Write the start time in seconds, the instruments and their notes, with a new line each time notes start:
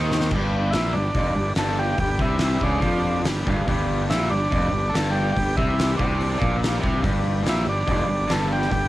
Already playing: fingered electric bass D#2, overdriven electric guitar D#3, transistor combo organ C4 G4 C5
0.12 snare
0.20 snare
0.31 fingered electric bass G1, overdriven electric guitar G2, transistor combo organ D4 G4, kick, crash
0.36 transistor combo organ B4
0.71 fingered electric bass A#1, overdriven electric guitar A#2, transistor combo organ D4 E4 G4 B4, snare, open hi-hat
0.93 fingered electric bass G1, overdriven electric guitar G2, transistor combo organ D4
1.14 fingered electric bass F1, overdriven electric guitar F2, transistor combo organ D4 G4 B4, kick, open hi-hat
1.35 fingered electric bass G1, overdriven electric guitar G2
1.55 fingered electric bass G1, overdriven electric guitar G2, transistor combo organ D4 G4 A4 B4, snare, open hi-hat
1.79 transistor combo organ G4
1.98 fingered electric bass G1, overdriven electric guitar G2, transistor combo organ D4 G4, kick, open hi-hat
2.02 transistor combo organ B4
2.19 fingered electric bass C2, overdriven electric guitar C3, transistor combo organ E4, kick
2.38 transistor combo organ G4, snare, open hi-hat
2.43 transistor combo organ D4 B4
2.61 fingered electric bass C#2, overdriven electric guitar C#3, transistor combo organ D4, kick
2.81 fingered electric bass F2, overdriven electric guitar F3, transistor combo organ D4, kick, open hi-hat
2.85 transistor combo organ G4 B4
3.23 fingered electric bass G1, overdriven electric guitar G2, transistor combo organ D4 G4 B4, snare, open hi-hat
3.47 fingered electric bass G1, overdriven electric guitar G2, kick
3.67 fingered electric bass G1, overdriven electric guitar G2, transistor combo organ D4 G4 B4, kick, open hi-hat
4.09 fingered electric bass A#1, overdriven electric guitar A#2, transistor combo organ D4 E4 G4 B4, snare, open hi-hat
4.31 fingered electric bass G1, overdriven electric guitar G2, transistor combo organ D4
4.51 fingered electric bass F1, overdriven electric guitar F2, transistor combo organ D4 G4 B4, kick, open hi-hat
4.71 fingered electric bass G1, overdriven electric guitar G2
4.89 transistor combo organ D4 G4 A4
4.94 fingered electric bass G1, overdriven electric guitar G2, transistor combo organ A4, snare, open hi-hat
5.11 transistor combo organ G4
5.32 overdriven electric guitar G2, transistor combo organ D4 G4, kick
5.37 fingered electric bass G1, transistor combo organ G4 B4, open hi-hat
5.57 fingered electric bass C2, overdriven electric guitar C3, transistor combo organ E4, kick
5.79 transistor combo organ D4 G4 B4, snare, open hi-hat
5.97 fingered electric bass C2, overdriven electric guitar C3, transistor combo organ D4, kick
6.20 transistor combo organ D4 G4 D5, open hi-hat
6.38 fingered electric bass A#1, overdriven electric guitar A#2, kick
6.61 transistor combo organ D4 G4 B4, snare, open hi-hat
6.80 fingered electric bass C2, overdriven electric guitar C3, kick
7.01 fingered electric bass G1, overdriven electric guitar G2, transistor combo organ D4 G4 B4, kick, open hi-hat
7.42 overdriven electric guitar A#2, transistor combo organ D4 G4, open hi-hat
7.46 fingered electric bass A#1, transistor combo organ E4 B4, snare
7.64 fingered electric bass G1, overdriven electric guitar G2
7.69 transistor combo organ D4
7.85 fingered electric bass F1, overdriven electric guitar F2, transistor combo organ D4 G4 B4, kick, open hi-hat
8.08 fingered electric bass G1, overdriven electric guitar G2
8.28 fingered electric bass G1, overdriven electric guitar G2, transistor combo organ D4 G4 A4 B4, snare, open hi-hat
8.53 transistor combo organ G4
8.62 snare
8.71 fingered electric bass G1, overdriven electric guitar G2, transistor combo organ D4 G4 B4, kick, open hi-hat